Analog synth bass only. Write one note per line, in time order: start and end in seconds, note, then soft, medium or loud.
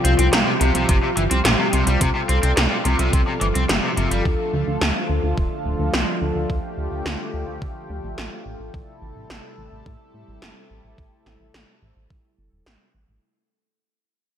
0.05 0.15 C2 medium
0.19 0.29 C2 medium
0.33 0.43 C2 loud
0.61 0.71 C2 loud
0.75 0.86 C2 medium
0.89 1.00 G1 loud
1.17 1.28 G1 medium
1.31 1.42 C2 medium
1.45 1.56 A#1 loud
1.73 1.84 C2 medium
1.87 1.98 C2 medium
2.01 2.12 C2 loud
2.29 2.40 C2 medium
2.43 2.54 C2 medium
2.57 2.68 C2 loud
2.85 2.96 C2 loud
2.99 3.10 C2 medium
3.13 3.24 C2 loud
3.41 3.52 G1 medium
3.55 3.66 C2 medium
3.69 3.80 G1 loud
3.97 4.08 G1 medium
4.11 4.22 G1 medium
4.25 4.36 D2 loud
4.53 4.64 D2 medium
4.67 4.78 D2 medium
4.81 4.92 D2 loud
5.10 5.20 D2 medium
5.23 5.34 D2 medium
5.38 5.48 D1 loud
5.66 5.76 D1 medium
5.80 5.90 D2 medium
5.94 6.04 C2 loud
6.22 6.32 D2 medium
6.36 6.46 D2 medium
6.50 6.60 D2 loud
6.78 6.88 D2 medium
6.92 7.02 D2 medium
7.06 7.16 D2 loud
7.34 7.44 D2 loud
7.48 7.58 D2 medium
7.62 7.72 D2 loud
7.90 8.00 D2 medium
8.04 8.14 A1 medium
8.18 8.28 A1 loud
8.46 8.56 A1 medium
8.60 8.71 A1 medium
8.74 8.85 A1 loud
9.02 9.13 A1 medium
9.16 9.27 A1 medium
9.30 9.41 A1 loud
9.58 9.69 A1 loud
9.72 9.83 A1 medium
9.86 9.97 A2 loud
10.14 10.25 A2 medium
10.28 10.39 A1 medium
10.42 10.53 G1 loud
10.70 10.81 A1 medium
10.84 10.95 A1 medium
10.98 11.09 A1 loud
11.26 11.37 A1 medium
11.40 11.51 A1 medium
11.54 11.65 A1 loud
11.82 11.93 A1 medium
11.96 12.07 A1 medium
12.10 12.21 A1 medium
12.38 12.49 G1 medium
12.52 12.63 E1 medium
12.66 12.77 A1 loud
12.95 13.05 A1 medium
13.09 13.19 A1 medium